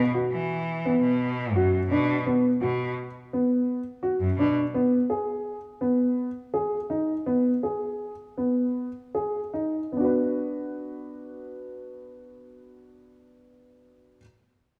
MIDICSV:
0, 0, Header, 1, 3, 480
1, 0, Start_track
1, 0, Tempo, 709220
1, 1525, Time_signature, 7, 3, 24, 8
1, 3929, Tempo, 731707
1, 5369, Tempo, 765306
1, 6329, Tempo, 793651
1, 9511, End_track
2, 0, Start_track
2, 0, Title_t, "Grand piano"
2, 0, Program_c, 0, 0
2, 96, Note_on_c, 0, 66, 56
2, 398, Note_off_c, 0, 66, 0
2, 579, Note_on_c, 0, 59, 67
2, 880, Note_off_c, 0, 59, 0
2, 1054, Note_on_c, 0, 66, 66
2, 1204, Note_off_c, 0, 66, 0
2, 1295, Note_on_c, 0, 62, 59
2, 1444, Note_off_c, 0, 62, 0
2, 1533, Note_on_c, 0, 59, 64
2, 1683, Note_off_c, 0, 59, 0
2, 1769, Note_on_c, 0, 66, 53
2, 2072, Note_off_c, 0, 66, 0
2, 2256, Note_on_c, 0, 59, 56
2, 2557, Note_off_c, 0, 59, 0
2, 2726, Note_on_c, 0, 66, 57
2, 2878, Note_off_c, 0, 66, 0
2, 2972, Note_on_c, 0, 62, 61
2, 3122, Note_off_c, 0, 62, 0
2, 3211, Note_on_c, 0, 59, 67
2, 3362, Note_off_c, 0, 59, 0
2, 3450, Note_on_c, 0, 68, 50
2, 3756, Note_off_c, 0, 68, 0
2, 3932, Note_on_c, 0, 59, 60
2, 4232, Note_off_c, 0, 59, 0
2, 4408, Note_on_c, 0, 68, 55
2, 4558, Note_off_c, 0, 68, 0
2, 4646, Note_on_c, 0, 63, 54
2, 4797, Note_off_c, 0, 63, 0
2, 4886, Note_on_c, 0, 59, 65
2, 5038, Note_off_c, 0, 59, 0
2, 5127, Note_on_c, 0, 68, 46
2, 5436, Note_off_c, 0, 68, 0
2, 5604, Note_on_c, 0, 59, 54
2, 5909, Note_off_c, 0, 59, 0
2, 6087, Note_on_c, 0, 68, 50
2, 6241, Note_off_c, 0, 68, 0
2, 6332, Note_on_c, 0, 63, 50
2, 6482, Note_off_c, 0, 63, 0
2, 6566, Note_on_c, 0, 59, 45
2, 6593, Note_on_c, 0, 62, 43
2, 6615, Note_on_c, 0, 66, 46
2, 6639, Note_on_c, 0, 71, 44
2, 9129, Note_off_c, 0, 59, 0
2, 9142, Note_off_c, 0, 62, 0
2, 9153, Note_off_c, 0, 66, 0
2, 9165, Note_off_c, 0, 71, 0
2, 9511, End_track
3, 0, Start_track
3, 0, Title_t, "Cello"
3, 0, Program_c, 1, 42
3, 213, Note_on_c, 1, 52, 61
3, 662, Note_off_c, 1, 52, 0
3, 684, Note_on_c, 1, 47, 67
3, 1041, Note_on_c, 1, 42, 73
3, 1051, Note_off_c, 1, 47, 0
3, 1259, Note_off_c, 1, 42, 0
3, 1280, Note_on_c, 1, 47, 76
3, 1498, Note_off_c, 1, 47, 0
3, 1766, Note_on_c, 1, 47, 64
3, 1981, Note_off_c, 1, 47, 0
3, 2841, Note_on_c, 1, 42, 61
3, 2951, Note_off_c, 1, 42, 0
3, 2964, Note_on_c, 1, 47, 74
3, 3072, Note_off_c, 1, 47, 0
3, 9511, End_track
0, 0, End_of_file